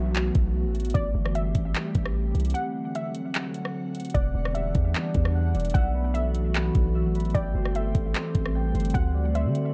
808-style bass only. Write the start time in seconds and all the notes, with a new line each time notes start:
Already playing: B1
0.35 B1
0.65 A1
0.95 A1
1.15 G1
1.55 A1
1.95 A1
2.35 C2
4.15 E1
4.35 E1
4.75 E2
5.15 E2
5.55 E1
5.75 B1
6.75 B1
7.05 A1
7.35 A1
7.55 G1
7.95 A1
8.35 A1
8.75 G1
8.95 D2
9.45 D3